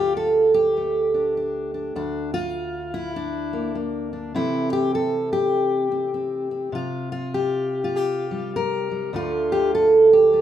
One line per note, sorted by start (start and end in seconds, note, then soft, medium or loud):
0.00 1.94 D2 medium
0.00 0.54 F4 medium
0.00 0.16 G4 loud
0.17 0.54 A4 medium
0.54 1.96 G4 medium
0.77 1.93 A3 soft
1.14 1.36 D4 soft
1.37 1.73 D4 soft
1.74 1.94 D4 soft
1.96 4.35 D2 medium
1.96 2.33 D4 medium
2.34 3.16 F4 loud
2.94 3.76 E4 medium
3.16 4.12 D4 medium
3.53 3.74 A#3 soft
3.75 4.32 A#3 medium
4.13 4.32 D4 soft
4.34 6.71 C3 medium
4.34 6.71 E3 medium
4.34 6.72 A3 medium
4.34 5.90 C4 soft
4.34 4.72 E4 loud
4.73 4.94 G4 loud
4.95 5.32 A4 loud
5.33 6.74 G4 loud
5.91 6.13 C4 soft
6.14 6.50 C4 soft
6.51 6.71 C4 soft
6.72 9.09 C3 medium
6.72 7.11 F4 medium
7.12 7.83 F4 medium
7.34 7.94 G4 medium
7.84 8.54 F4 medium
7.96 8.54 G4 loud
8.31 8.90 G3 soft
8.56 9.14 A#4 loud
8.91 9.14 G3 soft
9.13 10.41 D2 medium
9.13 10.41 D3 medium
9.13 10.33 A3 medium
9.13 10.11 F4 loud
9.52 9.74 G4 loud
9.75 10.11 A4 loud
10.13 10.41 G4 medium
10.33 10.41 A3 soft